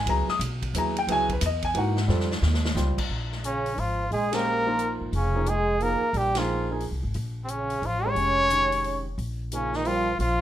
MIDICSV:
0, 0, Header, 1, 7, 480
1, 0, Start_track
1, 0, Tempo, 337268
1, 104, Time_signature, 3, 2, 24, 8
1, 14816, End_track
2, 0, Start_track
2, 0, Title_t, "Trumpet"
2, 0, Program_c, 0, 56
2, 4909, Note_on_c, 0, 61, 84
2, 5407, Note_on_c, 0, 65, 88
2, 5429, Note_off_c, 0, 61, 0
2, 5868, Note_off_c, 0, 65, 0
2, 5877, Note_on_c, 0, 68, 93
2, 6189, Note_on_c, 0, 70, 111
2, 6211, Note_off_c, 0, 68, 0
2, 7139, Note_off_c, 0, 70, 0
2, 7338, Note_on_c, 0, 61, 84
2, 7815, Note_on_c, 0, 68, 96
2, 7836, Note_off_c, 0, 61, 0
2, 8293, Note_on_c, 0, 70, 84
2, 8314, Note_off_c, 0, 68, 0
2, 8789, Note_on_c, 0, 67, 86
2, 8811, Note_off_c, 0, 70, 0
2, 9082, Note_on_c, 0, 65, 77
2, 9103, Note_off_c, 0, 67, 0
2, 9546, Note_off_c, 0, 65, 0
2, 10596, Note_on_c, 0, 60, 62
2, 10675, Note_on_c, 0, 61, 87
2, 10696, Note_off_c, 0, 60, 0
2, 11185, Note_on_c, 0, 65, 91
2, 11206, Note_off_c, 0, 61, 0
2, 11510, Note_on_c, 0, 73, 111
2, 11532, Note_off_c, 0, 65, 0
2, 12922, Note_off_c, 0, 73, 0
2, 13582, Note_on_c, 0, 61, 80
2, 13893, Note_on_c, 0, 63, 89
2, 13914, Note_off_c, 0, 61, 0
2, 14047, Note_on_c, 0, 65, 98
2, 14068, Note_off_c, 0, 63, 0
2, 14517, Note_off_c, 0, 65, 0
2, 14531, Note_on_c, 0, 65, 95
2, 14816, Note_off_c, 0, 65, 0
2, 14816, End_track
3, 0, Start_track
3, 0, Title_t, "Grand piano"
3, 0, Program_c, 1, 0
3, 107, Note_on_c, 1, 54, 63
3, 120, Note_on_c, 1, 59, 59
3, 123, Note_on_c, 1, 64, 56
3, 129, Note_on_c, 1, 68, 69
3, 141, Note_on_c, 1, 82, 100
3, 381, Note_off_c, 1, 54, 0
3, 387, Note_off_c, 1, 59, 0
3, 389, Note_off_c, 1, 64, 0
3, 392, Note_off_c, 1, 68, 0
3, 420, Note_off_c, 1, 82, 0
3, 424, Note_on_c, 1, 87, 105
3, 524, Note_off_c, 1, 87, 0
3, 1060, Note_on_c, 1, 54, 62
3, 1074, Note_on_c, 1, 59, 57
3, 1084, Note_on_c, 1, 64, 62
3, 1090, Note_on_c, 1, 68, 71
3, 1116, Note_on_c, 1, 82, 97
3, 1337, Note_off_c, 1, 54, 0
3, 1344, Note_off_c, 1, 59, 0
3, 1349, Note_off_c, 1, 64, 0
3, 1351, Note_off_c, 1, 68, 0
3, 1387, Note_off_c, 1, 82, 0
3, 1403, Note_on_c, 1, 79, 90
3, 1544, Note_on_c, 1, 54, 78
3, 1546, Note_on_c, 1, 59, 62
3, 1554, Note_off_c, 1, 79, 0
3, 1559, Note_on_c, 1, 64, 68
3, 1564, Note_on_c, 1, 68, 75
3, 1594, Note_on_c, 1, 80, 125
3, 1818, Note_off_c, 1, 54, 0
3, 1819, Note_off_c, 1, 59, 0
3, 1826, Note_off_c, 1, 64, 0
3, 1828, Note_off_c, 1, 68, 0
3, 1866, Note_off_c, 1, 80, 0
3, 1889, Note_on_c, 1, 71, 72
3, 2036, Note_off_c, 1, 71, 0
3, 2075, Note_on_c, 1, 75, 97
3, 2344, Note_on_c, 1, 80, 107
3, 2346, Note_off_c, 1, 75, 0
3, 2490, Note_on_c, 1, 52, 72
3, 2500, Note_on_c, 1, 58, 62
3, 2504, Note_off_c, 1, 80, 0
3, 2514, Note_on_c, 1, 63, 66
3, 2514, Note_on_c, 1, 66, 71
3, 2542, Note_on_c, 1, 78, 83
3, 2771, Note_off_c, 1, 52, 0
3, 2776, Note_off_c, 1, 58, 0
3, 2783, Note_off_c, 1, 63, 0
3, 2783, Note_off_c, 1, 66, 0
3, 2956, Note_on_c, 1, 55, 70
3, 2968, Note_off_c, 1, 78, 0
3, 2974, Note_on_c, 1, 60, 65
3, 2978, Note_on_c, 1, 65, 63
3, 2985, Note_on_c, 1, 69, 74
3, 3243, Note_off_c, 1, 55, 0
3, 3252, Note_off_c, 1, 60, 0
3, 3255, Note_off_c, 1, 65, 0
3, 3258, Note_off_c, 1, 69, 0
3, 3923, Note_on_c, 1, 55, 66
3, 3927, Note_on_c, 1, 60, 62
3, 3932, Note_on_c, 1, 65, 66
3, 3944, Note_on_c, 1, 72, 71
3, 4207, Note_off_c, 1, 55, 0
3, 4209, Note_off_c, 1, 60, 0
3, 4212, Note_off_c, 1, 65, 0
3, 4217, Note_off_c, 1, 72, 0
3, 6145, Note_on_c, 1, 56, 70
3, 6153, Note_on_c, 1, 61, 61
3, 6161, Note_on_c, 1, 67, 64
3, 6171, Note_on_c, 1, 72, 75
3, 6606, Note_off_c, 1, 56, 0
3, 6610, Note_off_c, 1, 61, 0
3, 6614, Note_off_c, 1, 67, 0
3, 6619, Note_off_c, 1, 72, 0
3, 6632, Note_on_c, 1, 53, 69
3, 6637, Note_on_c, 1, 58, 62
3, 6653, Note_on_c, 1, 63, 57
3, 6656, Note_on_c, 1, 65, 69
3, 7259, Note_off_c, 1, 53, 0
3, 7262, Note_off_c, 1, 58, 0
3, 7269, Note_off_c, 1, 63, 0
3, 7271, Note_off_c, 1, 65, 0
3, 7607, Note_on_c, 1, 53, 64
3, 7614, Note_on_c, 1, 58, 58
3, 7622, Note_on_c, 1, 63, 60
3, 7630, Note_on_c, 1, 68, 75
3, 7764, Note_off_c, 1, 53, 0
3, 7767, Note_off_c, 1, 58, 0
3, 7772, Note_off_c, 1, 63, 0
3, 7775, Note_off_c, 1, 68, 0
3, 8277, Note_on_c, 1, 53, 56
3, 8287, Note_on_c, 1, 58, 48
3, 8298, Note_on_c, 1, 63, 50
3, 8306, Note_on_c, 1, 68, 62
3, 8546, Note_off_c, 1, 53, 0
3, 8551, Note_off_c, 1, 58, 0
3, 8556, Note_off_c, 1, 63, 0
3, 8561, Note_off_c, 1, 68, 0
3, 9061, Note_on_c, 1, 53, 65
3, 9070, Note_on_c, 1, 58, 65
3, 9072, Note_on_c, 1, 63, 61
3, 9084, Note_on_c, 1, 68, 73
3, 9505, Note_off_c, 1, 53, 0
3, 9510, Note_off_c, 1, 58, 0
3, 9511, Note_off_c, 1, 63, 0
3, 9517, Note_off_c, 1, 68, 0
3, 9541, Note_on_c, 1, 53, 64
3, 9550, Note_on_c, 1, 58, 60
3, 9552, Note_on_c, 1, 63, 59
3, 9566, Note_on_c, 1, 68, 74
3, 9692, Note_off_c, 1, 53, 0
3, 9696, Note_off_c, 1, 58, 0
3, 9697, Note_off_c, 1, 63, 0
3, 9705, Note_off_c, 1, 68, 0
3, 11449, Note_on_c, 1, 56, 66
3, 11456, Note_on_c, 1, 61, 54
3, 11467, Note_on_c, 1, 67, 55
3, 11473, Note_on_c, 1, 73, 67
3, 12069, Note_off_c, 1, 56, 0
3, 12073, Note_off_c, 1, 61, 0
3, 12078, Note_off_c, 1, 67, 0
3, 12081, Note_off_c, 1, 73, 0
3, 12103, Note_on_c, 1, 51, 41
3, 12113, Note_on_c, 1, 56, 40
3, 12119, Note_on_c, 1, 61, 41
3, 12127, Note_on_c, 1, 67, 53
3, 12830, Note_off_c, 1, 51, 0
3, 12835, Note_off_c, 1, 56, 0
3, 12838, Note_off_c, 1, 61, 0
3, 12842, Note_off_c, 1, 67, 0
3, 13556, Note_on_c, 1, 58, 46
3, 13557, Note_on_c, 1, 53, 51
3, 13567, Note_on_c, 1, 63, 45
3, 13572, Note_on_c, 1, 68, 49
3, 14014, Note_off_c, 1, 53, 0
3, 14014, Note_off_c, 1, 58, 0
3, 14019, Note_off_c, 1, 63, 0
3, 14022, Note_off_c, 1, 68, 0
3, 14037, Note_on_c, 1, 55, 68
3, 14047, Note_on_c, 1, 60, 56
3, 14053, Note_on_c, 1, 65, 62
3, 14056, Note_on_c, 1, 70, 66
3, 14308, Note_off_c, 1, 55, 0
3, 14313, Note_off_c, 1, 60, 0
3, 14316, Note_off_c, 1, 65, 0
3, 14317, Note_off_c, 1, 70, 0
3, 14816, End_track
4, 0, Start_track
4, 0, Title_t, "Trombone"
4, 0, Program_c, 2, 57
4, 4897, Note_on_c, 2, 49, 68
4, 5394, Note_on_c, 2, 53, 72
4, 5415, Note_off_c, 2, 49, 0
4, 5834, Note_off_c, 2, 53, 0
4, 5843, Note_on_c, 2, 56, 86
4, 6167, Note_on_c, 2, 58, 78
4, 6188, Note_off_c, 2, 56, 0
4, 7128, Note_off_c, 2, 58, 0
4, 7302, Note_on_c, 2, 49, 76
4, 7794, Note_on_c, 2, 56, 75
4, 7815, Note_off_c, 2, 49, 0
4, 8263, Note_on_c, 2, 58, 74
4, 8285, Note_off_c, 2, 56, 0
4, 8756, Note_on_c, 2, 55, 73
4, 8777, Note_off_c, 2, 58, 0
4, 9081, Note_on_c, 2, 53, 64
4, 9102, Note_off_c, 2, 55, 0
4, 9546, Note_off_c, 2, 53, 0
4, 10586, Note_on_c, 2, 48, 43
4, 10685, Note_on_c, 2, 49, 66
4, 10706, Note_off_c, 2, 48, 0
4, 11158, Note_on_c, 2, 53, 69
4, 11180, Note_off_c, 2, 49, 0
4, 11498, Note_on_c, 2, 61, 79
4, 11520, Note_off_c, 2, 53, 0
4, 12916, Note_off_c, 2, 61, 0
4, 13561, Note_on_c, 2, 49, 75
4, 13881, Note_on_c, 2, 51, 78
4, 13903, Note_off_c, 2, 49, 0
4, 14026, Note_on_c, 2, 53, 86
4, 14047, Note_off_c, 2, 51, 0
4, 14485, Note_off_c, 2, 53, 0
4, 14494, Note_on_c, 2, 53, 80
4, 14816, Note_off_c, 2, 53, 0
4, 14816, End_track
5, 0, Start_track
5, 0, Title_t, "Upright bass"
5, 0, Program_c, 3, 32
5, 88, Note_on_c, 3, 37, 84
5, 380, Note_off_c, 3, 37, 0
5, 560, Note_on_c, 3, 35, 106
5, 1036, Note_off_c, 3, 35, 0
5, 1049, Note_on_c, 3, 39, 87
5, 1520, Note_off_c, 3, 39, 0
5, 1526, Note_on_c, 3, 37, 83
5, 1998, Note_off_c, 3, 37, 0
5, 2013, Note_on_c, 3, 40, 106
5, 2470, Note_off_c, 3, 40, 0
5, 2479, Note_on_c, 3, 44, 98
5, 2954, Note_off_c, 3, 44, 0
5, 2963, Note_on_c, 3, 41, 86
5, 3436, Note_off_c, 3, 41, 0
5, 3443, Note_on_c, 3, 39, 103
5, 3907, Note_off_c, 3, 39, 0
5, 3915, Note_on_c, 3, 37, 103
5, 4212, Note_off_c, 3, 37, 0
5, 4405, Note_on_c, 3, 34, 75
5, 5315, Note_off_c, 3, 34, 0
5, 5371, Note_on_c, 3, 32, 70
5, 5822, Note_off_c, 3, 32, 0
5, 5853, Note_on_c, 3, 34, 75
5, 7067, Note_off_c, 3, 34, 0
5, 7116, Note_on_c, 3, 32, 58
5, 7283, Note_off_c, 3, 32, 0
5, 7294, Note_on_c, 3, 29, 82
5, 8509, Note_off_c, 3, 29, 0
5, 8728, Note_on_c, 3, 34, 83
5, 9799, Note_off_c, 3, 34, 0
5, 9838, Note_on_c, 3, 36, 63
5, 9995, Note_off_c, 3, 36, 0
5, 10003, Note_on_c, 3, 32, 63
5, 10162, Note_off_c, 3, 32, 0
5, 10174, Note_on_c, 3, 34, 84
5, 11083, Note_off_c, 3, 34, 0
5, 11127, Note_on_c, 3, 33, 78
5, 11582, Note_off_c, 3, 33, 0
5, 11601, Note_on_c, 3, 29, 74
5, 12997, Note_off_c, 3, 29, 0
5, 13062, Note_on_c, 3, 34, 80
5, 14448, Note_off_c, 3, 34, 0
5, 14502, Note_on_c, 3, 34, 80
5, 14816, Note_off_c, 3, 34, 0
5, 14816, End_track
6, 0, Start_track
6, 0, Title_t, "Muted upright bass strokes"
6, 398, Note_on_c, 9, 29, 39
6, 540, Note_off_c, 9, 29, 0
6, 4233, Note_on_c, 9, 29, 42
6, 4376, Note_off_c, 9, 29, 0
6, 8550, Note_on_c, 9, 29, 37
6, 8692, Note_off_c, 9, 29, 0
6, 14816, End_track
7, 0, Start_track
7, 0, Title_t, "Drums"
7, 96, Note_on_c, 9, 51, 69
7, 239, Note_off_c, 9, 51, 0
7, 405, Note_on_c, 9, 38, 55
7, 547, Note_off_c, 9, 38, 0
7, 582, Note_on_c, 9, 44, 69
7, 582, Note_on_c, 9, 51, 81
7, 724, Note_off_c, 9, 44, 0
7, 724, Note_off_c, 9, 51, 0
7, 888, Note_on_c, 9, 36, 67
7, 888, Note_on_c, 9, 51, 53
7, 1030, Note_off_c, 9, 36, 0
7, 1030, Note_off_c, 9, 51, 0
7, 1060, Note_on_c, 9, 44, 63
7, 1060, Note_on_c, 9, 51, 69
7, 1203, Note_off_c, 9, 44, 0
7, 1203, Note_off_c, 9, 51, 0
7, 1374, Note_on_c, 9, 51, 54
7, 1516, Note_off_c, 9, 51, 0
7, 1543, Note_on_c, 9, 51, 72
7, 1685, Note_off_c, 9, 51, 0
7, 1842, Note_on_c, 9, 51, 53
7, 1843, Note_on_c, 9, 36, 74
7, 1985, Note_off_c, 9, 51, 0
7, 1986, Note_off_c, 9, 36, 0
7, 2007, Note_on_c, 9, 44, 74
7, 2007, Note_on_c, 9, 51, 84
7, 2150, Note_off_c, 9, 44, 0
7, 2150, Note_off_c, 9, 51, 0
7, 2312, Note_on_c, 9, 51, 54
7, 2320, Note_on_c, 9, 36, 58
7, 2454, Note_off_c, 9, 51, 0
7, 2462, Note_off_c, 9, 36, 0
7, 2485, Note_on_c, 9, 51, 61
7, 2627, Note_off_c, 9, 51, 0
7, 2799, Note_on_c, 9, 38, 68
7, 2941, Note_off_c, 9, 38, 0
7, 2971, Note_on_c, 9, 38, 54
7, 3113, Note_off_c, 9, 38, 0
7, 3134, Note_on_c, 9, 38, 54
7, 3277, Note_off_c, 9, 38, 0
7, 3293, Note_on_c, 9, 38, 83
7, 3436, Note_off_c, 9, 38, 0
7, 3453, Note_on_c, 9, 38, 77
7, 3596, Note_off_c, 9, 38, 0
7, 3617, Note_on_c, 9, 38, 78
7, 3760, Note_off_c, 9, 38, 0
7, 3775, Note_on_c, 9, 38, 101
7, 3917, Note_off_c, 9, 38, 0
7, 3939, Note_on_c, 9, 44, 57
7, 3941, Note_on_c, 9, 38, 59
7, 4082, Note_off_c, 9, 44, 0
7, 4083, Note_off_c, 9, 38, 0
7, 4243, Note_on_c, 9, 36, 82
7, 4245, Note_on_c, 9, 49, 84
7, 4385, Note_off_c, 9, 36, 0
7, 4387, Note_off_c, 9, 49, 0
7, 4725, Note_on_c, 9, 38, 36
7, 4867, Note_off_c, 9, 38, 0
7, 4897, Note_on_c, 9, 42, 52
7, 5040, Note_off_c, 9, 42, 0
7, 5207, Note_on_c, 9, 46, 38
7, 5350, Note_off_c, 9, 46, 0
7, 5375, Note_on_c, 9, 46, 39
7, 5517, Note_off_c, 9, 46, 0
7, 5858, Note_on_c, 9, 46, 45
7, 6000, Note_off_c, 9, 46, 0
7, 6157, Note_on_c, 9, 51, 65
7, 6159, Note_on_c, 9, 38, 77
7, 6300, Note_off_c, 9, 51, 0
7, 6301, Note_off_c, 9, 38, 0
7, 6814, Note_on_c, 9, 42, 45
7, 6956, Note_off_c, 9, 42, 0
7, 7299, Note_on_c, 9, 46, 46
7, 7441, Note_off_c, 9, 46, 0
7, 7775, Note_on_c, 9, 42, 54
7, 7917, Note_off_c, 9, 42, 0
7, 8260, Note_on_c, 9, 46, 38
7, 8402, Note_off_c, 9, 46, 0
7, 8739, Note_on_c, 9, 46, 43
7, 8881, Note_off_c, 9, 46, 0
7, 9036, Note_on_c, 9, 51, 62
7, 9038, Note_on_c, 9, 38, 80
7, 9179, Note_off_c, 9, 51, 0
7, 9180, Note_off_c, 9, 38, 0
7, 9683, Note_on_c, 9, 46, 39
7, 9826, Note_off_c, 9, 46, 0
7, 10164, Note_on_c, 9, 46, 43
7, 10306, Note_off_c, 9, 46, 0
7, 10651, Note_on_c, 9, 42, 53
7, 10794, Note_off_c, 9, 42, 0
7, 10957, Note_on_c, 9, 46, 39
7, 11100, Note_off_c, 9, 46, 0
7, 11141, Note_on_c, 9, 46, 42
7, 11284, Note_off_c, 9, 46, 0
7, 11614, Note_on_c, 9, 46, 44
7, 11757, Note_off_c, 9, 46, 0
7, 12100, Note_on_c, 9, 42, 55
7, 12243, Note_off_c, 9, 42, 0
7, 12412, Note_on_c, 9, 46, 38
7, 12554, Note_off_c, 9, 46, 0
7, 12584, Note_on_c, 9, 46, 45
7, 12726, Note_off_c, 9, 46, 0
7, 13071, Note_on_c, 9, 46, 43
7, 13214, Note_off_c, 9, 46, 0
7, 13543, Note_on_c, 9, 42, 57
7, 13685, Note_off_c, 9, 42, 0
7, 13851, Note_on_c, 9, 38, 43
7, 13994, Note_off_c, 9, 38, 0
7, 14020, Note_on_c, 9, 46, 42
7, 14162, Note_off_c, 9, 46, 0
7, 14512, Note_on_c, 9, 46, 47
7, 14654, Note_off_c, 9, 46, 0
7, 14816, End_track
0, 0, End_of_file